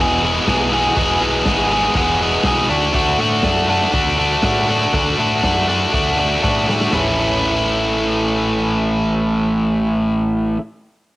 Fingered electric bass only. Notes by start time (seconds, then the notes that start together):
0.00 E1
0.48 B1
0.97 E1
1.21 B1
1.46 G#1
1.95 E1
2.45 B1
2.69 D2
2.94 D2
3.19 A2
3.44 F#2
3.94 D2
4.44 A2
4.94 D2
5.19 A2
5.44 F#2
5.94 D2
6.44 A2
6.94 A1